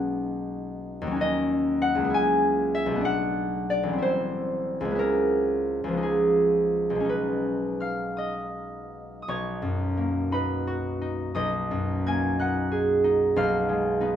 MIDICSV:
0, 0, Header, 1, 2, 480
1, 0, Start_track
1, 0, Tempo, 619835
1, 955, Time_signature, 6, 3, 24, 8
1, 2388, Tempo, 647948
1, 4308, Tempo, 710900
1, 5748, Tempo, 739827
1, 6708, Tempo, 695249
1, 8628, Tempo, 643777
1, 10187, End_track
2, 0, Start_track
2, 0, Title_t, "Harp"
2, 0, Program_c, 0, 46
2, 0, Note_on_c, 0, 35, 51
2, 0, Note_on_c, 0, 56, 46
2, 0, Note_on_c, 0, 61, 49
2, 0, Note_on_c, 0, 63, 45
2, 0, Note_on_c, 0, 66, 39
2, 0, Note_on_c, 0, 75, 76
2, 0, Note_on_c, 0, 78, 78
2, 786, Note_on_c, 0, 39, 59
2, 828, Note_on_c, 0, 54, 50
2, 853, Note_off_c, 0, 61, 0
2, 863, Note_on_c, 0, 61, 51
2, 890, Note_off_c, 0, 63, 0
2, 898, Note_off_c, 0, 35, 0
2, 900, Note_on_c, 0, 63, 46
2, 917, Note_off_c, 0, 56, 0
2, 927, Note_off_c, 0, 75, 0
2, 936, Note_on_c, 0, 75, 87
2, 1397, Note_off_c, 0, 78, 0
2, 1407, Note_on_c, 0, 78, 94
2, 1510, Note_on_c, 0, 37, 49
2, 1548, Note_on_c, 0, 56, 44
2, 1583, Note_on_c, 0, 59, 49
2, 1601, Note_off_c, 0, 39, 0
2, 1622, Note_off_c, 0, 54, 0
2, 1624, Note_on_c, 0, 64, 46
2, 1658, Note_off_c, 0, 63, 0
2, 1659, Note_on_c, 0, 80, 88
2, 1662, Note_off_c, 0, 66, 0
2, 1674, Note_off_c, 0, 78, 0
2, 1677, Note_off_c, 0, 75, 0
2, 2126, Note_on_c, 0, 76, 86
2, 2214, Note_on_c, 0, 35, 57
2, 2255, Note_on_c, 0, 57, 48
2, 2278, Note_off_c, 0, 59, 0
2, 2288, Note_on_c, 0, 59, 54
2, 2327, Note_off_c, 0, 37, 0
2, 2330, Note_on_c, 0, 62, 48
2, 2346, Note_off_c, 0, 56, 0
2, 2360, Note_off_c, 0, 61, 0
2, 2361, Note_on_c, 0, 78, 93
2, 2384, Note_off_c, 0, 64, 0
2, 2396, Note_off_c, 0, 76, 0
2, 2401, Note_off_c, 0, 80, 0
2, 2844, Note_on_c, 0, 74, 78
2, 2943, Note_on_c, 0, 33, 50
2, 2982, Note_on_c, 0, 55, 45
2, 3015, Note_on_c, 0, 60, 44
2, 3039, Note_off_c, 0, 35, 0
2, 3052, Note_on_c, 0, 64, 43
2, 3074, Note_off_c, 0, 59, 0
2, 3084, Note_on_c, 0, 72, 71
2, 3094, Note_off_c, 0, 62, 0
2, 3109, Note_off_c, 0, 78, 0
2, 3113, Note_off_c, 0, 74, 0
2, 3663, Note_on_c, 0, 37, 54
2, 3697, Note_on_c, 0, 56, 46
2, 3738, Note_on_c, 0, 59, 48
2, 3756, Note_off_c, 0, 33, 0
2, 3763, Note_off_c, 0, 64, 0
2, 3772, Note_on_c, 0, 64, 46
2, 3773, Note_off_c, 0, 57, 0
2, 3776, Note_off_c, 0, 55, 0
2, 3792, Note_off_c, 0, 60, 0
2, 3800, Note_on_c, 0, 70, 78
2, 3827, Note_off_c, 0, 72, 0
2, 4410, Note_off_c, 0, 37, 0
2, 4418, Note_on_c, 0, 37, 42
2, 4446, Note_on_c, 0, 53, 43
2, 4469, Note_off_c, 0, 59, 0
2, 4477, Note_on_c, 0, 59, 40
2, 4508, Note_on_c, 0, 63, 39
2, 4541, Note_off_c, 0, 64, 0
2, 4544, Note_on_c, 0, 68, 58
2, 5039, Note_off_c, 0, 70, 0
2, 5134, Note_on_c, 0, 35, 47
2, 5161, Note_off_c, 0, 56, 0
2, 5169, Note_on_c, 0, 56, 39
2, 5202, Note_on_c, 0, 61, 39
2, 5221, Note_off_c, 0, 37, 0
2, 5226, Note_off_c, 0, 63, 0
2, 5234, Note_on_c, 0, 63, 35
2, 5235, Note_off_c, 0, 53, 0
2, 5266, Note_on_c, 0, 71, 62
2, 5745, Note_on_c, 0, 89, 62
2, 5752, Note_on_c, 0, 77, 48
2, 5981, Note_on_c, 0, 87, 58
2, 5991, Note_on_c, 0, 75, 44
2, 6153, Note_off_c, 0, 89, 0
2, 6658, Note_off_c, 0, 87, 0
2, 6663, Note_off_c, 0, 35, 0
2, 6666, Note_on_c, 0, 87, 39
2, 6680, Note_off_c, 0, 56, 0
2, 6704, Note_on_c, 0, 35, 54
2, 6707, Note_on_c, 0, 85, 71
2, 6712, Note_on_c, 0, 73, 59
2, 6727, Note_off_c, 0, 68, 0
2, 6728, Note_off_c, 0, 77, 0
2, 6746, Note_off_c, 0, 87, 0
2, 6938, Note_on_c, 0, 42, 49
2, 7080, Note_off_c, 0, 59, 0
2, 7180, Note_on_c, 0, 58, 41
2, 7413, Note_off_c, 0, 63, 0
2, 7420, Note_on_c, 0, 63, 50
2, 7422, Note_on_c, 0, 83, 70
2, 7426, Note_off_c, 0, 71, 0
2, 7434, Note_on_c, 0, 71, 50
2, 7664, Note_on_c, 0, 66, 51
2, 7821, Note_off_c, 0, 61, 0
2, 7892, Note_off_c, 0, 63, 0
2, 7900, Note_on_c, 0, 63, 48
2, 8124, Note_off_c, 0, 35, 0
2, 8129, Note_on_c, 0, 87, 80
2, 8131, Note_off_c, 0, 75, 0
2, 8133, Note_on_c, 0, 35, 57
2, 8139, Note_on_c, 0, 75, 58
2, 8146, Note_off_c, 0, 42, 0
2, 8150, Note_off_c, 0, 85, 0
2, 8153, Note_off_c, 0, 73, 0
2, 8380, Note_on_c, 0, 42, 46
2, 8617, Note_off_c, 0, 58, 0
2, 8624, Note_on_c, 0, 58, 50
2, 8626, Note_on_c, 0, 92, 73
2, 8635, Note_on_c, 0, 80, 57
2, 8866, Note_off_c, 0, 63, 0
2, 8870, Note_on_c, 0, 90, 70
2, 8875, Note_on_c, 0, 63, 45
2, 8882, Note_on_c, 0, 78, 56
2, 9109, Note_on_c, 0, 68, 53
2, 9343, Note_off_c, 0, 63, 0
2, 9352, Note_on_c, 0, 63, 52
2, 9583, Note_off_c, 0, 35, 0
2, 9592, Note_on_c, 0, 35, 66
2, 9598, Note_on_c, 0, 77, 64
2, 9600, Note_on_c, 0, 89, 86
2, 9613, Note_off_c, 0, 58, 0
2, 9614, Note_off_c, 0, 42, 0
2, 9835, Note_on_c, 0, 56, 50
2, 10064, Note_off_c, 0, 63, 0
2, 10073, Note_on_c, 0, 63, 50
2, 10078, Note_on_c, 0, 59, 47
2, 10187, Note_off_c, 0, 35, 0
2, 10187, Note_off_c, 0, 56, 0
2, 10187, Note_off_c, 0, 59, 0
2, 10187, Note_off_c, 0, 63, 0
2, 10187, Note_off_c, 0, 66, 0
2, 10187, Note_off_c, 0, 68, 0
2, 10187, Note_off_c, 0, 71, 0
2, 10187, Note_off_c, 0, 75, 0
2, 10187, Note_off_c, 0, 77, 0
2, 10187, Note_off_c, 0, 78, 0
2, 10187, Note_off_c, 0, 80, 0
2, 10187, Note_off_c, 0, 83, 0
2, 10187, Note_off_c, 0, 87, 0
2, 10187, Note_off_c, 0, 89, 0
2, 10187, Note_off_c, 0, 90, 0
2, 10187, Note_off_c, 0, 92, 0
2, 10187, End_track
0, 0, End_of_file